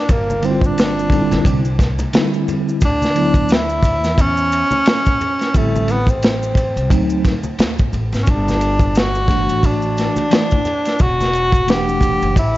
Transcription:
Already playing: D4
0.09 G1 A#3, kick, ride, maracas
0.30 high conga, maracas
0.42 D3 G3 C4 E4, ride, maracas
0.51 F4
0.61 kick, maracas
0.66 D4
0.78 snare, hi-hat pedal, ride, maracas
0.99 maracas
1.10 D3 G3 C4 D#4, kick, ride, low conga, maracas
1.19 E4
1.31 A1, snare, ride, maracas
1.45 C2, kick, ride, maracas
1.65 maracas
1.79 kick, snare, ride, maracas
1.99 ride, high conga, maracas
2.13 D3 G3 C4 D#4, snare, hi-hat pedal, ride, maracas
2.22 E4
2.34 maracas
2.48 ride, low conga, maracas
2.69 maracas
2.81 D2, kick, ride, maracas
2.85 D4
3.02 snare, high conga, maracas
3.15 D3 F#3 B3 E4, ride, maracas
3.34 kick, ride, maracas
3.49 snare, hi-hat pedal, ride, maracas
3.53 E4
3.69 maracas
3.83 kick, ride, low conga, maracas
4.03 E2, snare, ride, maracas
4.18 C#4, kick, ride, maracas
4.37 maracas
4.52 ride, maracas
4.71 high conga, maracas
4.86 snare, hi-hat pedal, ride, maracas
5.06 kick, maracas
5.21 ride, low conga, maracas
5.39 snare, ride, maracas
5.54 A1 D3 G3 A3 C4 E4, kick, ride, maracas
5.76 high conga, maracas
5.88 B3, ride, maracas
6.07 C4, kick, ride, maracas
6.22 snare, hi-hat pedal, ride, maracas
6.43 maracas
6.55 kick, ride, high conga, low conga, maracas
6.76 C2, ride, maracas
6.90 D2 F#3 A3 C4 D#4, kick, ride, maracas
7.10 maracas
7.24 kick, snare, ride, maracas
7.43 high conga, maracas
7.59 D#2, snare, hi-hat pedal, ride, high conga, maracas
7.79 kick, high conga, maracas
7.93 A1, ride, low conga, maracas
8.12 G#1, snare, ride, maracas
8.23 C#4, maracas
8.27 G1 D4, kick, ride
8.48 snare, high conga, maracas
8.61 ride, maracas
8.79 kick, ride, maracas
8.95 F#4, snare, hi-hat pedal, ride, maracas
9.15 maracas
9.28 E3 A3 D4 F#4, kick, ride, low conga, maracas
9.49 A1, ride, maracas
9.63 D4, kick, ride, maracas
9.82 maracas
9.97 snare, ride, maracas
10.16 ride, high conga, maracas
10.31 E3 A3 D4 E4, snare, hi-hat pedal, ride, maracas
10.51 kick, maracas
10.65 ride, low conga, maracas
10.85 snare, ride, maracas
10.99 E1 F#4, kick, ride, maracas
11.21 snare, high conga, maracas
11.33 ride, maracas
11.52 kick, ride, maracas
11.67 E3 A3 D4 G4 F#5, snare, hi-hat pedal, ride, maracas
11.89 maracas
12.01 kick, ride, low conga, maracas
12.22 F#1, ride, maracas
12.36 A1 E4, kick, ride, maracas

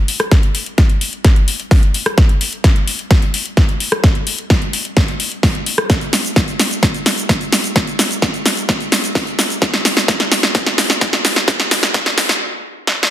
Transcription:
0.08 open hi-hat
0.20 cross-stick, closed hi-hat
0.31 kick, snare, closed hi-hat
0.43 closed hi-hat
0.55 open hi-hat
0.66 closed hi-hat
0.78 kick, snare, closed hi-hat
0.90 closed hi-hat
1.01 open hi-hat
1.13 closed hi-hat
1.25 kick, snare, closed hi-hat
1.36 closed hi-hat
1.48 open hi-hat
1.60 closed hi-hat
1.71 kick, snare, open hi-hat
1.83 closed hi-hat
1.94 open hi-hat
2.06 cross-stick, closed hi-hat
2.18 kick, snare, closed hi-hat
2.29 closed hi-hat
2.41 open hi-hat
2.53 closed hi-hat
2.64 kick, snare, closed hi-hat
2.76 closed hi-hat
2.88 open hi-hat
2.99 closed hi-hat
3.11 kick, snare, closed hi-hat
3.22 closed hi-hat
3.34 open hi-hat
3.46 closed hi-hat
3.57 kick, snare, closed hi-hat
3.69 closed hi-hat
3.80 open hi-hat
3.92 cross-stick, closed hi-hat
4.04 kick, snare, closed hi-hat
4.15 closed hi-hat
4.27 open hi-hat
4.38 closed hi-hat
4.50 kick, snare, closed hi-hat
4.62 closed hi-hat
4.73 open hi-hat
4.85 closed hi-hat
4.97 kick, snare, closed hi-hat
5.08 closed hi-hat
5.20 open hi-hat
5.32 closed hi-hat
5.43 kick, snare, open hi-hat
5.55 closed hi-hat
5.66 open hi-hat
5.78 cross-stick
5.90 kick, snare, closed hi-hat, shaker
6.01 closed hi-hat, shaker
6.13 snare, open hi-hat, shaker
6.25 closed hi-hat, shaker
6.36 kick, snare, closed hi-hat, shaker
6.48 closed hi-hat, shaker
6.59 snare, open hi-hat, shaker
6.71 closed hi-hat, shaker
6.83 kick, snare, closed hi-hat, shaker
6.94 closed hi-hat, shaker
7.06 snare, open hi-hat, shaker
7.18 closed hi-hat, shaker
7.29 kick, snare, closed hi-hat, shaker
7.41 closed hi-hat, shaker
7.52 snare, open hi-hat, shaker
7.64 closed hi-hat, shaker
7.76 kick, snare, closed hi-hat, shaker
7.87 closed hi-hat, shaker
7.99 snare, open hi-hat, shaker
8.11 closed hi-hat, shaker
8.22 kick, snare, closed hi-hat, shaker
8.34 closed hi-hat, shaker
8.46 snare, open hi-hat, shaker
8.57 closed hi-hat, shaker
8.69 kick, snare, closed hi-hat, shaker
8.80 closed hi-hat, shaker
8.92 snare, open hi-hat, shaker
9.04 closed hi-hat, shaker
9.15 kick, snare, open hi-hat, shaker
9.27 closed hi-hat, shaker
9.39 snare, open hi-hat, shaker
9.50 closed hi-hat, shaker
9.62 kick, snare, closed hi-hat, shaker
9.74 snare, closed hi-hat, shaker
9.85 snare, open hi-hat, shaker
9.97 snare, closed hi-hat, shaker
10.08 kick, snare, closed hi-hat, shaker
10.20 snare, closed hi-hat, shaker
10.32 snare, open hi-hat, shaker
10.43 snare, closed hi-hat, shaker
10.55 kick, snare, closed hi-hat, shaker
10.66 snare, closed hi-hat, shaker
10.78 snare, open hi-hat, shaker
10.90 snare, closed hi-hat, shaker
11.01 kick, snare, closed hi-hat, shaker
11.13 snare, closed hi-hat, shaker
11.25 snare, open hi-hat, shaker
11.36 snare, closed hi-hat, shaker
11.48 kick, snare, closed hi-hat, shaker
11.60 snare, closed hi-hat, shaker
11.71 snare, open hi-hat, shaker
11.83 snare, closed hi-hat, shaker
11.94 kick, snare, closed hi-hat, shaker
12.06 snare, closed hi-hat, shaker
12.18 snare, open hi-hat, shaker
12.29 snare, closed hi-hat, shaker
12.87 snare
13.03 snare

